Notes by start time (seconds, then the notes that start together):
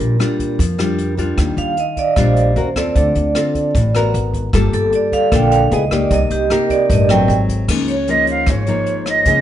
Already playing: A#2 G3 D4 F4
0.00 A#1, closed hi-hat
0.19 G3 D4 F4, cross-stick, closed hi-hat
0.39 kick, closed hi-hat
0.59 F2 F3, kick, closed hi-hat
0.78 G3 D4 F4, cross-stick, closed hi-hat
0.98 closed hi-hat
1.17 G3 D4 F4, kick, closed hi-hat
1.37 D#2 D#3, kick, cross-stick, closed hi-hat
1.57 D#2 F5, closed hi-hat
1.77 D#5, closed hi-hat
1.97 D5, kick, closed hi-hat
2.16 A#1 A#2 G3 D4 F4 C5, kick, cross-stick, closed hi-hat
2.36 closed hi-hat
2.56 D#2 C#4 F#4 A#4, closed hi-hat
2.76 C4 F4 A4 D5, kick, cross-stick, closed hi-hat
2.95 D2 D3, kick, closed hi-hat
3.15 D2, closed hi-hat
3.35 C4 F4 A4, cross-stick, closed hi-hat
3.55 kick, closed hi-hat
3.75 A1 A2, kick, closed hi-hat
3.95 B3 F#4 A#4, cross-stick, closed hi-hat
4.14 G#1, closed hi-hat
4.34 kick, closed hi-hat
4.53 G1 G3 A#3 F4 A4, kick, cross-stick, closed hi-hat
4.73 G1 A4, closed hi-hat
4.92 D5, closed hi-hat
5.12 F5, kick, closed hi-hat
5.32 A#1 D3 A#3 F4 A4 G5, kick, cross-stick, closed hi-hat
5.52 F5, closed hi-hat
5.71 C#2 B3 E4 G#4 D#5, closed hi-hat
5.91 A#3 D#4 G4 D5, kick, cross-stick, closed hi-hat
6.11 C2 C3 D#5, kick, closed hi-hat
6.30 C2 G4, closed hi-hat
6.50 A#3 D#4 G4 A#4, cross-stick, closed hi-hat
6.70 D5, kick, closed hi-hat
6.90 A1 G2 D#5, kick, closed hi-hat
7.09 F#3 A3 C4 G5, cross-stick, closed hi-hat
7.28 G#1, closed hi-hat
7.49 kick, closed hi-hat
7.68 C#2 C#3 F3 A#3 D#4, kick, cross-stick, crash
7.88 C#5, closed hi-hat
8.08 F3 A#3 D#4 D#5, closed hi-hat
8.27 F5, closed hi-hat
8.46 G#1 G#2 C#5, kick, cross-stick, closed hi-hat
8.67 F3 A#3 D#4, closed hi-hat
8.86 closed hi-hat
9.06 D#5, cross-stick, closed hi-hat
9.25 C#2 C#3 F3 A#3 D#4, kick, closed hi-hat